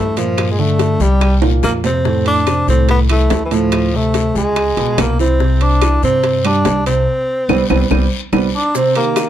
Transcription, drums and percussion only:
0.17 high timbale medium
0.17 short guiro medium
0.38 high bongo medium
0.38 high timbale medium
0.38 long guiro medium
0.38 claves medium
0.79 high bongo medium
0.79 high timbale medium
0.79 low timbale medium
0.79 short guiro medium
1.00 high bongo soft
1.00 short guiro medium
1.21 high bongo medium
1.21 high timbale medium
1.21 long guiro medium
1.21 claves medium
1.42 high bongo soft
1.42 high timbale medium
1.63 high bongo medium
1.63 low bongo medium
1.63 low timbale medium
1.63 short guiro medium
1.63 claves medium
1.84 high bongo soft
1.84 low timbale medium
1.84 short guiro medium
2.05 high bongo medium
2.05 long guiro medium
2.26 high bongo soft
2.26 high timbale medium
2.47 high bongo medium
2.47 high timbale medium
2.47 low timbale soft
2.47 short guiro medium
2.47 claves medium
2.68 high bongo soft
2.68 short guiro medium
2.89 high bongo medium
2.89 high timbale medium
2.89 long guiro medium
3.09 high bongo soft
3.09 high timbale medium
3.09 claves medium
3.30 high bongo medium
3.30 low bongo medium
3.30 high timbale medium
3.30 low timbale medium
3.30 short guiro medium
3.51 high timbale medium
3.51 short guiro medium
3.72 high bongo medium
3.72 high timbale medium
3.72 long guiro medium
3.72 claves medium
4.14 high bongo medium
4.14 high timbale medium
4.14 low timbale medium
4.14 short guiro medium
4.35 high bongo soft
4.35 short guiro medium
4.56 high bongo medium
4.56 high timbale medium
4.56 long guiro medium
4.56 claves medium
4.77 high bongo soft
4.77 high timbale medium
4.98 high bongo medium
4.98 low bongo medium
4.98 high timbale medium
4.98 low timbale medium
4.98 short guiro medium
4.98 claves medium
5.19 high bongo soft
5.19 short guiro medium
5.40 high bongo medium
5.40 long guiro medium
5.61 high bongo soft
5.61 high timbale medium
5.82 high bongo medium
5.82 high timbale medium
5.82 low timbale medium
5.82 short guiro medium
5.82 claves medium
6.03 high bongo soft
6.03 short guiro medium
6.23 high bongo medium
6.23 high timbale medium
6.23 long guiro medium
6.45 high bongo soft
6.45 high timbale medium
6.45 claves medium
6.65 high bongo medium
6.65 low bongo medium
6.65 high timbale medium
6.65 low timbale medium
6.65 short guiro medium
6.86 high timbale medium
6.86 short guiro medium
7.49 low bongo medium
7.49 high timbale medium
7.49 long guiro medium
7.49 claves medium
7.70 low bongo medium
7.70 high timbale medium
7.70 long guiro medium
7.70 claves medium
7.91 low bongo medium
7.91 high timbale medium
7.91 long guiro medium
7.91 claves medium
8.33 low bongo medium
8.33 high timbale loud
8.33 long guiro medium
8.33 claves medium
8.75 high bongo medium
8.75 long guiro medium
8.75 maracas medium
8.95 high bongo soft
8.95 high timbale medium
9.16 high bongo medium
9.16 high timbale medium
9.16 low timbale medium
9.16 short guiro medium
9.16 claves medium
9.16 maracas medium

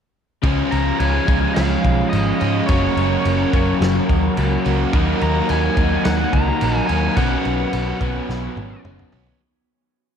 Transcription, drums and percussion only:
0.43 kick loud
0.43 crash medium
0.72 crash medium
1.00 crash medium
1.28 kick loud
1.28 crash medium
1.56 snare loud
1.56 crash medium
1.84 kick medium
1.84 crash medium
2.13 crash medium
2.41 crash medium
2.69 kick loud
2.69 crash medium
2.97 crash medium
3.25 crash medium
3.53 kick loud
3.53 crash medium
3.82 snare loud
3.82 crash medium
4.09 kick medium
4.09 crash soft
4.37 crash medium
4.66 crash soft
4.93 kick loud
4.93 crash medium
5.21 crash medium
5.49 crash medium
5.77 kick medium
5.77 crash medium
6.05 snare loud
6.05 crash medium
6.33 kick medium
6.33 crash medium
6.61 crash medium
6.89 crash medium
7.17 kick loud
7.17 crash medium
7.45 crash medium
7.73 crash medium
8.01 kick medium
8.01 crash medium
8.29 snare medium
8.57 high tom medium
8.85 mid tom medium
8.99 mid tom medium
9.12 floor tom medium
9.27 floor tom medium

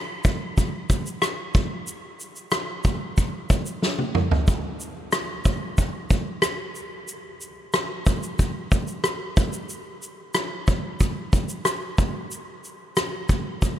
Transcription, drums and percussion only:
0.24 kick medium
0.24 shaker soft
0.58 kick medium
0.58 shaker medium
0.90 kick medium
0.90 shaker medium
1.06 shaker soft
1.22 cross-stick medium
1.22 shaker medium
1.55 kick medium
1.55 shaker soft
1.87 shaker medium
2.20 shaker soft
2.36 shaker soft
2.51 cross-stick loud
2.51 shaker medium
2.84 kick medium
2.84 shaker soft
3.17 kick medium
3.17 shaker medium
3.50 kick medium
3.50 shaker medium
3.66 shaker soft
3.82 snare soft
3.98 high tom soft
4.15 mid tom medium
4.31 floor tom medium
4.48 kick medium
4.48 shaker medium
4.80 shaker soft
5.12 cross-stick loud
5.12 shaker medium
5.45 kick medium
5.45 shaker soft
5.78 kick medium
5.78 shaker medium
6.10 kick medium
6.10 shaker medium
6.42 cross-stick medium
6.42 shaker medium
6.75 shaker soft
7.08 shaker medium
7.41 shaker soft
7.73 cross-stick loud
7.73 shaker medium
8.06 kick medium
8.06 shaker soft
8.23 shaker soft
8.39 kick medium
8.39 shaker medium
8.72 kick medium
8.72 shaker medium
8.88 shaker soft
9.04 cross-stick medium
9.04 shaker medium
9.37 kick medium
9.37 shaker soft
9.53 shaker soft
9.69 shaker medium
10.03 shaker soft
10.34 cross-stick loud
10.34 shaker medium
10.67 kick medium
10.67 shaker medium
11.00 kick medium
11.00 shaker medium
11.33 kick medium
11.33 shaker medium
11.49 shaker medium
11.65 cross-stick medium
11.65 shaker medium
11.98 kick medium
11.98 shaker soft
12.31 shaker medium
12.64 shaker soft
12.97 cross-stick loud
12.97 shaker medium
13.29 kick medium
13.29 shaker soft
13.62 kick medium
13.62 shaker medium

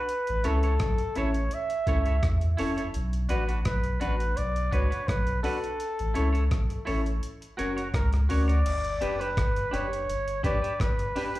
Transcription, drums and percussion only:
0.09 closed hi-hat medium
0.27 closed hi-hat soft
0.44 closed hi-hat medium
0.63 closed hi-hat soft
0.80 kick loud
0.80 cross-stick loud
0.80 closed hi-hat medium
0.98 closed hi-hat medium
1.15 closed hi-hat medium
1.34 closed hi-hat soft
1.51 closed hi-hat medium
1.70 closed hi-hat medium
1.87 kick medium
1.87 closed hi-hat medium
2.06 closed hi-hat soft
2.23 kick loud
2.23 cross-stick loud
2.23 closed hi-hat medium
2.41 closed hi-hat medium
2.58 open hi-hat medium
2.78 closed hi-hat medium
2.94 closed hi-hat medium
3.13 closed hi-hat medium
3.29 closed hi-hat medium
3.49 closed hi-hat soft
3.65 kick loud
3.65 cross-stick loud
3.65 closed hi-hat medium
3.84 closed hi-hat medium
4.01 closed hi-hat medium
4.20 closed hi-hat soft
4.37 closed hi-hat medium
4.56 closed hi-hat soft
4.73 kick medium
4.73 closed hi-hat medium
4.92 closed hi-hat soft
5.08 kick loud
5.08 cross-stick loud
5.08 closed hi-hat medium
5.27 closed hi-hat soft
5.44 open hi-hat medium
5.64 closed hi-hat soft
5.80 closed hi-hat medium
5.99 closed hi-hat soft
6.15 closed hi-hat medium
6.35 closed hi-hat soft
6.51 kick loud
6.51 cross-stick loud
6.51 closed hi-hat medium
6.70 closed hi-hat medium
6.87 open hi-hat soft
7.06 closed hi-hat soft
7.23 closed hi-hat medium
7.42 closed hi-hat soft
7.59 closed hi-hat medium
7.78 closed hi-hat soft
7.94 kick loud
7.94 cross-stick loud
7.94 closed hi-hat medium
8.13 cross-stick medium
8.13 closed hi-hat medium
8.30 open hi-hat medium
8.49 closed hi-hat soft
8.66 closed hi-hat medium
8.66 crash loud
8.85 closed hi-hat medium
9.02 closed hi-hat medium
9.21 closed hi-hat soft
9.37 kick loud
9.37 cross-stick loud
9.37 closed hi-hat medium
9.56 closed hi-hat medium
9.74 closed hi-hat medium
9.93 closed hi-hat medium
10.10 closed hi-hat medium
10.28 closed hi-hat medium
10.44 kick medium
10.44 closed hi-hat medium
10.64 closed hi-hat medium
10.80 kick loud
10.80 cross-stick loud
10.80 closed hi-hat medium
10.99 closed hi-hat medium
11.16 open hi-hat medium
11.35 closed hi-hat medium

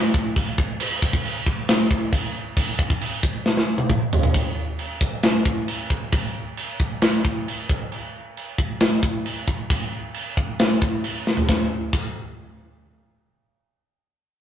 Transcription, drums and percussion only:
0.14 kick loud
0.36 kick loud
0.36 china medium
0.58 kick loud
0.80 china medium
0.80 crash loud
1.02 kick loud
1.13 kick medium
1.25 china medium
1.46 kick medium
1.68 snare loud
1.68 china medium
1.91 kick medium
2.13 kick loud
2.13 china medium
2.57 kick loud
2.57 china medium
2.79 kick loud
2.90 kick medium
3.01 china medium
3.23 kick medium
3.46 snare medium
3.57 snare medium
3.78 high tom medium
3.90 kick loud
3.90 mid tom loud
4.13 floor tom loud
4.23 floor tom loud
4.34 kick loud
4.34 china medium
4.79 china medium
5.01 kick loud
5.23 snare loud
5.23 china medium
5.45 kick medium
5.68 china medium
5.90 kick medium
6.12 kick loud
6.12 china medium
6.57 china medium
6.80 kick medium
7.02 snare loud
7.02 china medium
7.25 kick medium
7.48 china medium
7.69 kick medium
7.92 china soft
8.37 china soft
8.58 kick medium
8.80 snare loud
8.80 china soft
9.03 kick medium
9.26 china medium
9.48 kick medium
9.70 kick loud
9.70 china medium
10.14 china medium
10.37 kick medium
10.59 snare loud
10.59 china medium
10.82 kick medium
11.04 china medium
11.27 snare medium
11.37 floor tom medium
11.49 kick medium
11.49 snare medium
11.93 kick medium
11.93 crash medium

